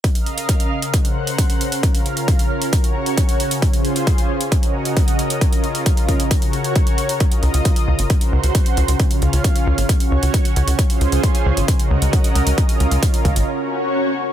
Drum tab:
HH |xxxxxx-xxx-xxxxx|xxxxxx-xxx-xxxxx|xxxxxx-xxx-xxxxx|xxxxxxxxxxxxxxxx|
BD |o---o---o---o---|o---o---o---o---|o---o---o---o---|o---o-o-o---o---|

HH |xxxxxx-xxx-xxxxx|xxxxxx-xxx-xxxxx|xxxxxx-xxx-xxxxx|xxxxxxxx--------|
BD |o---o---o---o---|o---o---o---o---|o---o---o---o---|o---o-o---------|